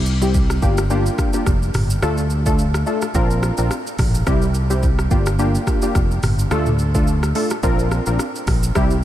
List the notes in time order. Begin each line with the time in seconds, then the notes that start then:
Already playing: C2
0.06 shaker
0.21 G3 C4 E4 G4, shaker
0.34 kick, shaker
0.50 cross-stick, shaker
0.62 G1 A#3 D4 F4 G4, kick, shaker
0.77 cross-stick, shaker
0.90 A#3 D4 F4 G4, shaker
1.06 shaker
1.18 kick, cross-stick, shaker
1.33 A#3 D4 F4 G4, shaker
1.46 F1, kick, cross-stick, shaker
1.62 shaker
1.74 G1, cross-stick, mid tom, open hi-hat, shaker
1.90 shaker
2.02 D2 A3 D4 F4 A4, cross-stick, shaker
2.18 shaker
2.30 shaker
2.46 A3 D4 F4 A4, kick, shaker
2.59 shaker
2.74 cross-stick, shaker
2.87 A3 D4 F4 A4, shaker
3.02 cross-stick, shaker
3.14 A#1 C4 D4 F4 A#4, kick, shaker
3.31 shaker
3.43 cross-stick, shaker
3.58 A#1 C4 D4 F4 A#4, shaker
3.71 cross-stick, shaker
3.87 shaker
3.99 A#1, kick, cross-stick, mid tom, open hi-hat, shaker
4.15 shaker
4.27 C2 G3 C4 E4 G4, kick, cross-stick, shaker
4.42 shaker
4.54 shaker
4.70 G3 C4 E4 G4, shaker
4.83 kick, shaker
4.99 cross-stick, shaker
5.11 G1 A#3 D4 F4 G4, kick, shaker
5.26 cross-stick, shaker
5.39 A#3 D4 F4 G4, shaker
5.55 shaker
5.67 kick, cross-stick, shaker
5.82 A#3 D4 F4 G4, shaker
5.95 F1, kick, cross-stick, shaker
6.11 shaker
6.23 G1, cross-stick, mid tom, open hi-hat, shaker
6.39 shaker
6.51 D2 A3 D4 F4 A4, cross-stick, shaker
6.66 mid tom, shaker
6.79 shaker
6.94 A3 D4 F4 A4, kick, shaker
7.07 shaker
7.23 cross-stick, shaker
7.35 A3 D4 F4 A4, open hi-hat, shaker
7.50 cross-stick, shaker
7.63 A#1 C4 D4 F4 A#4, kick, shaker
7.79 shaker
7.92 cross-stick, shaker
8.06 A#1 C4 D4 F4 A#4, shaker
8.19 cross-stick, shaker
8.35 shaker
8.47 A#1, kick, cross-stick, open hi-hat, shaker
8.63 shaker
8.75 C2 G3 C4 E4 G4, kick, cross-stick, shaker
8.90 shaker